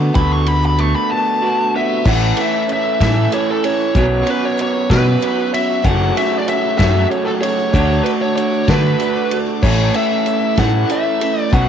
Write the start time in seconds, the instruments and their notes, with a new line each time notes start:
Already playing: picked electric bass D3, clean electric guitar D3 A3 F#4, steel-string acoustic guitar A3 B3 F#4, tonewheel organ A3 D4 F#4, upright piano D4 F#4 B4
0.15 picked electric bass D2, steel-string acoustic guitar D3 A3 B3, lead electric guitar B5, kick, ride, shaker
0.19 steel-string acoustic guitar F#4
0.31 lead electric guitar C#6, shaker
0.47 clean electric guitar D3, steel-string acoustic guitar A3 B3 F#4, upright piano D4 F#4 B4, lead electric guitar B5, ride
0.63 lead electric guitar B5, shaker
0.78 steel-string acoustic guitar D3 A3 B3 F#4, upright piano D4 F#4 B4, lead electric guitar C#6, ride, shaker
0.96 lead electric guitar B5
1.11 steel-string acoustic guitar D3 A3 B3 F#4, lead electric guitar A5
1.42 steel-string acoustic guitar D3 A3 B3, upright piano D4 F#4 B4, clean electric guitar F#4
1.47 steel-string acoustic guitar F#4
1.73 tonewheel organ A3 B3, upright piano D4 F#4 B4, steel-string acoustic guitar F#4, lead electric guitar E5
1.78 steel-string acoustic guitar A3 B3, tonewheel organ C4
1.83 tonewheel organ D4 E4
1.88 tonewheel organ F4 G4
1.93 tonewheel organ A4 B4
1.99 tonewheel organ C5 D5
2.04 picked electric bass A1, steel-string acoustic guitar A2 E3 A3, tonewheel organ C#4 E4 A4, upright piano C#4 E4 A4 C#5, kick, crash, shaker
2.08 steel-string acoustic guitar C#4 E4, lead electric guitar F#5
2.37 steel-string acoustic guitar E3 A3 C#4 E4, upright piano C#4 E4 A4 B4, lead electric guitar E5, ride
2.54 steel-string acoustic guitar A3 C#4 E4
2.68 upright piano C#4 E4 A4 C#5, ride, shaker
2.73 lead electric guitar E5
2.86 steel-string acoustic guitar A3 C#4 E4
3.00 picked electric bass A2, steel-string acoustic guitar A2 E3 A3 C#4 E4, lead electric guitar E5, kick, snare, ride, shaker
3.31 steel-string acoustic guitar E3 A3 C#4, upright piano C#4 E4 A4 C#5, lead electric guitar C#5, ride, shaker
3.37 steel-string acoustic guitar E4
3.49 steel-string acoustic guitar A3 C#4 E4, lead electric guitar A4
3.63 upright piano C#4 E4 A4 C#5, lead electric guitar C#5, ride
3.79 steel-string acoustic guitar A3 C#4 E4, shaker
3.94 picked electric bass B1, steel-string acoustic guitar B2 F#3 B3 C#4 F#4, tonewheel organ C#4 F#4 B4, upright piano C#4 F#4 B4 C#5, kick, ride, shaker
4.25 steel-string acoustic guitar F#3 B3 C#4 F#4, upright piano C#4 F#4 B4 C#5, ride
4.30 lead electric guitar B4
4.43 steel-string acoustic guitar B3 C#4 F#4, lead electric guitar C#5
4.58 upright piano C#4 F#4 B4 C#5, lead electric guitar C#5, ride, shaker
4.73 steel-string acoustic guitar B3 C#4 F#4
4.89 steel-string acoustic guitar B2 F#3 B3 C#4 F#4, picked electric bass B2, lead electric guitar B4, kick, snare, ride, shaker
5.21 steel-string acoustic guitar F#3 B3 C#4 F#4, upright piano C#4 F#4 B4 C#5, ride, shaker
5.38 steel-string acoustic guitar B3 C#4 F#4
5.53 upright piano C#4 F#4 B4 C#5, lead electric guitar E5, ride
5.69 steel-string acoustic guitar B3 C#4 F#4, shaker
5.82 picked electric bass F#1, steel-string acoustic guitar F#2 C#3 F#3 A3 C#4 F#4, upright piano C#4 F#4 A4 C#5, tonewheel organ C#4 F#4 A4, lead electric guitar F#5, kick, ride, shaker
6.15 steel-string acoustic guitar F#3 A3 C#4 F#4, upright piano C#4 F#4 A4 C#5, lead electric guitar E5, ride
6.30 steel-string acoustic guitar F#3 A3 C#4 F#4
6.39 lead electric guitar D5
6.47 upright piano C#4 F#4 A4 C#5, lead electric guitar E5, ride, shaker
6.62 steel-string acoustic guitar F#3 A3 C#4 F#4
6.77 steel-string acoustic guitar F#2 C#3 F#3 A3 C#4 F#4, picked electric bass F#2, lead electric guitar E5, kick, snare, ride, shaker
7.09 steel-string acoustic guitar F#3 A3 C#4 F#4, upright piano C#4 F#4 A4 C#5, lead electric guitar C#5, ride, shaker
7.25 steel-string acoustic guitar F#3 A3 C#4 F#4, lead electric guitar A4
7.41 upright piano C#4 F#4 A4 C#5, lead electric guitar C#5, ride
7.57 steel-string acoustic guitar F#3 A3 C#4 F#4, shaker
7.73 picked electric bass D2, steel-string acoustic guitar D3 A3 D4 F#4, upright piano D4 F#4 A4 D5, tonewheel organ D4 F#4 A4, kick, ride, shaker
7.91 shaker
8.04 steel-string acoustic guitar D3 A3 D4 F#4, upright piano D4 F#4 A4 D5, lead electric guitar B4, ride
8.20 steel-string acoustic guitar A3 D4 F#4, lead electric guitar C#5
8.36 upright piano D4 F#4 A4 F#5, lead electric guitar C#5, ride, shaker
8.50 steel-string acoustic guitar A3 D4 F#4, shaker
8.65 steel-string acoustic guitar D3 A3 D4 F#4, picked electric bass D3, kick, snare, ride
8.70 clean electric guitar D3, lead electric guitar B4, shaker
8.98 steel-string acoustic guitar D3 A3 D4 F#4, upright piano D4 F#4 A4 D5, ride, shaker
9.14 steel-string acoustic guitar A3 D4 F#4, shaker
9.31 upright piano D4 F#4 A4 D5, ride
9.46 steel-string acoustic guitar A3 D4 F#4
9.61 picked electric bass A1, steel-string acoustic guitar A2 E3 A3 C#4 E4, upright piano C#4 E4 A4 C#5, tonewheel organ C#4 E4 A4, lead electric guitar C#5, kick, crash, shaker
9.92 steel-string acoustic guitar E3 A3 C#4 E4, upright piano C#4 E4 A4 E5, lead electric guitar E5, ride
10.09 steel-string acoustic guitar A3 C#4 E4
10.26 upright piano C#4 E4 A4 C#5, ride, shaker
10.41 steel-string acoustic guitar A3 C#4 E4
10.55 steel-string acoustic guitar A2 E3 A3 C#4 E4, picked electric bass A2, lead electric guitar F#5, kick, snare, ride, shaker
10.60 clean electric guitar A2
10.89 steel-string acoustic guitar E3 A3 C#4 E4, upright piano C#4 E4 A4 C#5, lead electric guitar E5, ride, shaker
11.03 steel-string acoustic guitar A3 C#4 E4
11.21 upright piano C#4 E4 A4 E5, ride
11.34 steel-string acoustic guitar A3 C#4 E4, shaker
11.40 lead electric guitar D5
11.50 picked electric bass B1, steel-string acoustic guitar B2 F#3 B3 C#4 F#4, upright piano C#4 F#4 B4 C#5, tonewheel organ C#4 F#4 B4, lead electric guitar F#5, kick, ride, shaker